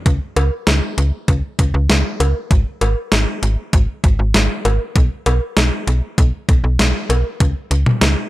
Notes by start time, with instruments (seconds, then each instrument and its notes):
0.06 fm bass C#2, kick, closed hi-hat
0.36 fm bass C#2, closed hi-hat, cowbell
0.67 fm bass C#2, snare, closed hi-hat
0.98 fm bass C#2, closed hi-hat
1.28 fm bass C#2, kick, closed hi-hat
1.59 fm bass C#2, kick, closed hi-hat
1.74 fm bass C#2
1.90 fm bass C#2, snare, closed hi-hat
2.20 fm bass C#2, closed hi-hat, cowbell
2.51 fm bass G#1, kick, closed hi-hat
2.81 fm bass G#1, closed hi-hat, cowbell
3.12 fm bass G#1, snare, closed hi-hat
3.43 fm bass G#1, closed hi-hat
3.73 fm bass G#1, kick, closed hi-hat
4.04 fm bass G#1, kick, closed hi-hat
4.19 fm bass G#1
4.34 fm bass G#1, snare, closed hi-hat
4.65 fm bass G#1, closed hi-hat, cowbell
4.96 fm bass B1, kick, closed hi-hat
5.26 fm bass B1, closed hi-hat, cowbell
5.57 fm bass B1, snare, closed hi-hat
5.87 fm bass B1, closed hi-hat
6.18 fm bass B1, kick, closed hi-hat
6.49 fm bass B1, kick, closed hi-hat
6.64 fm bass B1
6.79 fm bass B1, snare, closed hi-hat
7.09 fm bass B1, closed hi-hat, cowbell
7.40 fm bass C#2, kick, closed hi-hat
7.71 fm bass C#2, closed hi-hat
7.86 mid tom
8.01 fm bass C#2, snare, closed hi-hat